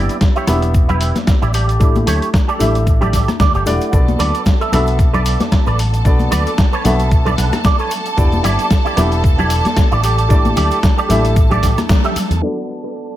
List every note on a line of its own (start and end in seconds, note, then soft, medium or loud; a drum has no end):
0.00 0.45 B3 medium
0.00 0.45 D4 medium
0.00 0.15 E4 loud
0.00 0.45 E4 medium
0.00 0.15 G4 medium
0.00 0.46 G4 medium
0.00 0.16 D5 loud
0.00 0.46 D5 medium
0.09 closed hi-hat soft
0.09 shaker soft
0.21 kick loud
0.21 snare loud
0.21 closed hi-hat soft
0.21 shaker soft
0.35 0.62 E4 medium
0.35 0.63 G4 medium
0.35 0.63 C#5 medium
0.35 closed hi-hat soft
0.35 shaker soft
0.47 1.11 E1 medium
0.47 1.52 B3 medium
0.47 1.53 D4 medium
0.47 1.53 E4 medium
0.47 1.53 G4 medium
0.47 1.53 E5 medium
0.47 cross-stick medium
0.47 open hi-hat loud
0.47 high conga medium
0.47 low conga medium
0.47 shaker medium
0.62 closed hi-hat soft
0.62 shaker soft
0.74 kick loud
0.74 closed hi-hat soft
0.74 shaker medium
0.88 1.15 E4 loud
0.88 1.16 G4 medium
0.88 1.16 B4 loud
0.88 closed hi-hat soft
0.88 low conga medium
0.88 shaker soft
1.01 open hi-hat loud
1.01 shaker medium
1.16 snare soft
1.16 closed hi-hat soft
1.16 high conga medium
1.16 shaker soft
1.27 kick loud
1.27 cross-stick medium
1.27 snare loud
1.27 closed hi-hat soft
1.27 shaker medium
1.41 1.77 A1 medium
1.41 1.54 E4 medium
1.41 1.52 G4 medium
1.41 1.53 D5 medium
1.41 closed hi-hat soft
1.41 shaker soft
1.53 1.97 G4 medium
1.53 1.98 A4 medium
1.53 1.98 D5 medium
1.53 open hi-hat loud
1.53 shaker medium
1.69 closed hi-hat soft
1.69 shaker soft
1.80 2.02 A1 medium
1.80 2.57 A3 medium
1.80 2.57 D4 medium
1.80 2.57 E4 medium
1.80 2.58 G4 medium
1.80 kick loud
1.80 closed hi-hat soft
1.80 shaker soft
1.95 closed hi-hat soft
1.95 high conga medium
1.95 shaker soft
2.06 2.19 D2 medium
2.06 2.28 G4 loud
2.06 2.28 A4 medium
2.06 2.28 C#5 loud
2.06 open hi-hat loud
2.06 low conga medium
2.06 shaker medium
2.22 closed hi-hat soft
2.22 shaker soft
2.34 kick loud
2.34 snare loud
2.34 closed hi-hat soft
2.34 shaker soft
2.48 2.75 G4 medium
2.48 2.75 A4 medium
2.48 2.75 D5 medium
2.48 closed hi-hat soft
2.48 shaker soft
2.59 3.09 A1 medium
2.59 3.64 A3 medium
2.59 3.64 D4 medium
2.59 3.64 E4 medium
2.59 3.64 G4 medium
2.59 3.64 E5 medium
2.59 open hi-hat loud
2.59 high conga medium
2.59 low conga medium
2.59 shaker medium
2.75 closed hi-hat soft
2.75 shaker soft
2.87 kick loud
2.87 closed hi-hat soft
2.87 shaker soft
3.01 3.28 G4 loud
3.01 3.28 A4 loud
3.01 3.28 D5 loud
3.01 closed hi-hat soft
3.01 low conga medium
3.01 shaker soft
3.13 3.25 A1 medium
3.13 kick medium
3.13 snare soft
3.13 open hi-hat loud
3.13 shaker medium
3.28 muted picked electric bass stroke soft
3.28 cross-stick medium
3.28 closed hi-hat soft
3.28 high conga medium
3.28 shaker soft
3.40 3.52 D2 medium
3.40 3.54 D5 medium
3.40 kick loud
3.40 snare loud
3.40 closed hi-hat soft
3.40 shaker soft
3.54 3.64 G1 medium
3.54 3.66 G4 medium
3.54 3.66 A4 medium
3.54 3.66 D5 medium
3.54 closed hi-hat soft
3.54 shaker soft
3.66 3.78 E1 medium
3.66 3.90 A3 medium
3.66 3.90 D4 medium
3.66 3.90 E4 medium
3.66 3.90 G4 medium
3.66 3.90 D5 medium
3.66 3.91 F#5 medium
3.66 open hi-hat loud
3.66 shaker medium
3.81 muted clean electric guitar stroke soft
3.81 closed hi-hat soft
3.81 shaker soft
3.92 4.15 B1 medium
3.92 4.69 B3 medium
3.92 4.70 D4 medium
3.92 4.70 F#4 medium
3.92 12.41 A4 medium
3.92 4.70 A4 medium
3.92 4.70 D5 medium
3.92 12.41 A5 medium
3.92 kick loud
3.92 closed hi-hat soft
3.92 shaker soft
4.08 closed hi-hat soft
4.08 high conga medium
4.08 shaker soft
4.19 4.31 D2 medium
4.19 4.40 A4 loud
4.19 4.40 B4 medium
4.19 4.40 D5 loud
4.19 open hi-hat loud
4.19 low conga medium
4.19 shaker medium
4.34 closed hi-hat soft
4.34 shaker soft
4.46 kick loud
4.46 snare loud
4.46 closed hi-hat soft
4.46 shaker soft
4.60 4.87 A4 medium
4.60 4.87 B4 medium
4.60 4.88 E5 medium
4.60 closed hi-hat soft
4.60 shaker soft
4.72 5.35 B1 medium
4.72 6.02 B3 medium
4.72 6.03 D4 medium
4.72 6.03 F#4 medium
4.72 6.03 A4 medium
4.72 6.03 E5 medium
4.72 cross-stick medium
4.72 open hi-hat loud
4.72 high conga medium
4.72 low conga medium
4.72 shaker medium
4.87 closed hi-hat soft
4.87 shaker soft
4.99 kick loud
4.99 closed hi-hat soft
4.99 shaker soft
5.13 5.40 A4 loud
5.13 5.40 B4 medium
5.13 5.41 D5 loud
5.13 closed hi-hat soft
5.13 low conga medium
5.13 shaker soft
5.26 open hi-hat loud
5.26 shaker medium
5.40 snare soft
5.40 closed hi-hat soft
5.40 high conga medium
5.40 shaker soft
5.52 kick loud
5.52 cross-stick medium
5.52 snare loud
5.52 closed hi-hat soft
5.52 shaker medium
5.66 6.01 A1 medium
5.66 5.79 A4 medium
5.66 5.79 B4 medium
5.66 5.79 D5 medium
5.66 closed hi-hat soft
5.66 shaker soft
5.79 open hi-hat loud
5.79 shaker medium
5.93 muted clean electric guitar stroke soft
5.93 closed hi-hat soft
5.93 shaker soft
6.05 6.27 B1 medium
6.05 6.82 B3 medium
6.05 6.82 D4 medium
6.05 6.82 F#4 medium
6.05 6.83 A4 medium
6.05 6.83 D5 medium
6.05 kick loud
6.05 closed hi-hat medium
6.05 shaker soft
6.19 closed hi-hat soft
6.19 high conga medium
6.19 shaker soft
6.31 6.44 D2 medium
6.31 6.52 A4 loud
6.31 6.52 B4 loud
6.31 6.53 D5 loud
6.31 open hi-hat medium
6.31 low conga medium
6.31 shaker medium
6.46 closed hi-hat soft
6.46 shaker soft
6.58 kick loud
6.58 snare loud
6.58 closed hi-hat soft
6.58 shaker soft
6.72 6.99 A4 medium
6.72 7.00 B4 medium
6.72 7.00 C#5 medium
6.72 closed hi-hat soft
6.72 shaker soft
6.84 7.34 B1 medium
6.84 8.15 B3 medium
6.84 8.15 D4 medium
6.84 8.15 F#4 medium
6.84 8.15 A4 medium
6.84 8.16 E5 medium
6.84 open hi-hat loud
6.84 high conga medium
6.84 low conga medium
6.84 shaker medium
6.99 closed hi-hat medium
6.99 shaker soft
7.11 kick loud
7.11 closed hi-hat soft
7.11 shaker soft
7.25 7.52 A4 loud
7.25 7.53 B4 loud
7.25 7.37 D5 loud
7.25 closed hi-hat soft
7.25 low conga medium
7.25 shaker soft
7.38 7.50 B1 medium
7.38 7.63 F#5 medium
7.38 snare soft
7.38 open hi-hat medium
7.38 shaker medium
7.53 cross-stick medium
7.53 closed hi-hat soft
7.53 high conga medium
7.53 shaker soft
7.64 7.80 D5 medium
7.64 kick loud
7.64 snare loud
7.64 closed hi-hat soft
7.64 shaker soft
7.79 7.91 A4 medium
7.79 7.91 B4 medium
7.79 7.92 C#5 medium
7.79 closed hi-hat soft
7.79 shaker soft
7.91 open hi-hat loud
7.91 shaker medium
8.05 muted clean electric guitar stroke soft
8.05 closed hi-hat soft
8.05 shaker soft
8.17 8.39 E1 medium
8.17 8.94 B3 medium
8.17 8.94 D4 medium
8.17 8.95 E4 medium
8.17 8.95 G4 medium
8.17 8.95 D5 medium
8.17 kick loud
8.17 closed hi-hat medium
8.17 shaker medium
8.32 closed hi-hat soft
8.32 high conga medium
8.32 shaker soft
8.43 8.56 G1 medium
8.43 8.65 E4 loud
8.43 8.65 G4 loud
8.43 8.65 D5 loud
8.43 open hi-hat medium
8.43 low conga medium
8.43 shaker medium
8.59 closed hi-hat medium
8.59 shaker soft
8.71 kick loud
8.71 snare loud
8.71 closed hi-hat medium
8.71 shaker medium
8.85 9.12 E4 medium
8.85 9.12 G4 medium
8.85 9.12 D5 medium
8.85 closed hi-hat soft
8.85 shaker soft
8.96 9.60 E1 medium
8.96 10.02 B3 medium
8.96 10.02 D4 medium
8.96 10.02 E4 medium
8.96 10.02 G4 medium
8.96 10.03 E5 medium
8.96 cross-stick medium
8.96 open hi-hat loud
8.96 high conga medium
8.96 low conga medium
8.96 shaker medium
9.12 closed hi-hat medium
9.12 shaker soft
9.24 kick loud
9.24 closed hi-hat medium
9.24 shaker soft
9.38 9.65 E4 loud
9.38 9.65 G4 loud
9.38 9.66 D5 loud
9.38 closed hi-hat soft
9.38 low conga medium
9.38 shaker soft
9.50 open hi-hat loud
9.50 shaker medium
9.65 snare soft
9.65 closed hi-hat soft
9.65 high conga medium
9.65 shaker soft
9.76 kick loud
9.76 cross-stick medium
9.76 snare loud
9.76 closed hi-hat medium
9.76 shaker medium
9.91 10.26 A1 medium
9.91 10.03 E4 medium
9.91 10.02 G4 medium
9.91 10.03 D5 medium
9.91 closed hi-hat soft
9.91 shaker soft
10.03 10.47 G4 medium
10.03 10.47 A4 medium
10.03 10.48 D5 medium
10.03 open hi-hat loud
10.03 shaker medium
10.18 closed hi-hat medium
10.18 shaker soft
10.29 10.52 A1 medium
10.29 11.06 A3 medium
10.29 11.07 D4 medium
10.29 11.07 E4 medium
10.29 11.07 G4 medium
10.29 11.07 D5 medium
10.29 kick loud
10.29 closed hi-hat medium
10.29 shaker soft
10.45 closed hi-hat soft
10.45 high conga medium
10.45 shaker soft
10.56 10.68 D2 loud
10.56 10.77 G4 loud
10.56 10.77 A4 loud
10.56 10.78 D5 loud
10.56 open hi-hat medium
10.56 low conga medium
10.56 shaker medium
10.71 closed hi-hat medium
10.71 shaker soft
10.83 kick loud
10.83 snare loud
10.83 closed hi-hat medium
10.83 shaker medium
10.97 11.24 G4 medium
10.97 11.25 A4 medium
10.97 11.25 D5 loud
10.97 closed hi-hat soft
10.97 shaker soft
11.09 11.59 A1 medium
11.09 12.39 A3 medium
11.09 12.39 D4 medium
11.09 12.40 E4 medium
11.09 12.40 G4 medium
11.09 12.40 E5 medium
11.09 open hi-hat loud
11.09 high conga medium
11.09 low conga medium
11.09 shaker medium
11.25 closed hi-hat medium
11.25 shaker soft
11.36 kick loud
11.36 closed hi-hat medium
11.36 shaker medium
11.50 11.77 G4 loud
11.50 11.78 A4 loud
11.50 11.78 D5 loud
11.50 closed hi-hat soft
11.50 low conga medium
11.50 shaker soft
11.63 11.75 A1 medium
11.63 kick medium
11.63 snare soft
11.63 open hi-hat loud
11.63 shaker medium
11.78 cross-stick medium
11.78 closed hi-hat medium
11.78 high conga loud
11.78 shaker soft
11.89 kick loud
11.89 snare loud
11.89 closed hi-hat medium
11.89 shaker medium
12.04 12.16 G4 medium
12.04 12.16 A4 medium
12.04 12.16 E5 medium
12.04 closed hi-hat soft
12.04 shaker soft
12.16 muted picked electric bass stroke soft
12.16 open hi-hat loud
12.16 shaker medium
12.30 12.40 E2 medium
12.30 muted clean electric guitar stroke soft
12.30 closed hi-hat medium
12.30 shaker soft
12.42 13.17 B3 medium
12.42 13.17 D4 medium
12.42 13.17 F#4 medium
12.42 12.63 A4 medium
12.42 13.17 A4 medium
12.42 12.63 B4 medium
12.42 12.63 D5 loud
12.42 13.17 D5 medium
12.42 13.17 A5 medium
12.69 open hi-hat medium
12.69 shaker medium
12.83 13.16 A4 medium
12.83 13.16 B4 medium
12.83 13.17 D5 medium
12.83 closed hi-hat soft
12.83 shaker soft
12.96 closed hi-hat soft
12.96 shaker soft
13.11 closed hi-hat soft